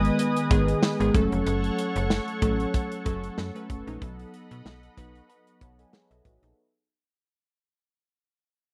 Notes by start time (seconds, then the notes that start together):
Already playing: G#1 D#3 G#3 B3 G#4 B4 D#5 G#5 D#6
0.05 closed hi-hat
0.19 closed hi-hat
0.36 closed hi-hat
0.50 G#1 D#3 G#3 B3 G#4, kick, closed hi-hat
0.68 closed hi-hat
0.83 snare
1.00 G#1 D#3 G#3 B3 G#4, closed hi-hat
1.14 F#1 F#3 A3 C#4 A4 C#5 F#5 C#6, kick, closed hi-hat
1.32 F1, closed hi-hat
1.46 F#1, closed hi-hat
1.64 closed hi-hat
1.78 closed hi-hat
1.96 F#1, closed hi-hat
2.10 snare
2.28 closed hi-hat
2.42 A1 F#3 A3 C#4 A4, kick, closed hi-hat
2.60 closed hi-hat
2.74 kick, closed hi-hat
2.92 closed hi-hat
3.05 F#1 F#3 A3 C#4 A4, kick, closed hi-hat
3.24 closed hi-hat
3.38 F#2, snare
3.55 F#3 A3 C#4 B4, closed hi-hat
3.70 F#1, kick, closed hi-hat
3.86 A#1 F#3 A3 C#4 D#4, closed hi-hat
4.01 B1 F#3 B3 D#4 A4 D#5 F#5 B5, kick, closed hi-hat
4.19 closed hi-hat
4.34 closed hi-hat
4.51 B2, closed hi-hat
4.65 B1, snare
4.83 closed hi-hat
4.97 B1 F#3 B3 D#4 B4 C#6, kick, closed hi-hat
5.15 closed hi-hat
5.29 B5, closed hi-hat
5.47 closed hi-hat
5.61 B1 C#5 F#5 A5, kick, closed hi-hat
5.79 A4 D#5 G#5, closed hi-hat
5.93 G#4 C#5 F#5, snare
6.11 B1 A4 D#5 E5, closed hi-hat
6.25 A1 F#4 B4 D#5, kick, closed hi-hat
6.42 A#1 D#4 A4, closed hi-hat